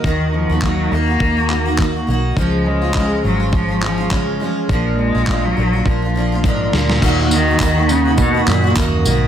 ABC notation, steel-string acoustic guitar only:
X:1
M:4/4
L:1/16
Q:"Swing 16ths" 1/4=103
K:Ebm
V:1 name="Steel-string acoustic guitar"
[E,B,EG]3 [B,EG] [E,B,EG]2 [E,B,EG] [B,EG] [E,B,EG] [B,EG] [E,B,EG] [B,EG] [E,B,EG] [B,EG] [E,B,EG]2 | [D,F,A,DF]3 [A,DF] [D,F,A,DF]2 [F,A,DF] [A,DF] [F,A,DF] [A,DF] [F,A,DF] [A,DF] [D,F,A,DF]2 [F,A,DF]2 | [B,,F,B,=DF]3 [B,DF] [B,,F,B,DF]2 [F,B,DF] [B,DF] [F,B,DF] [B,DF] [F,B,DF] [B,DF] [B,,F,B,DF]2 [F,B,DF]2 | [E,B,EG] [B,EG] [E,B,EG] [B,EG] [E,B,EG] [B,EG]2 [B,EG]2 [B,EG] [E,B,EG] [B,EG] [E,B,EG]2 [E,B,EG]2 |]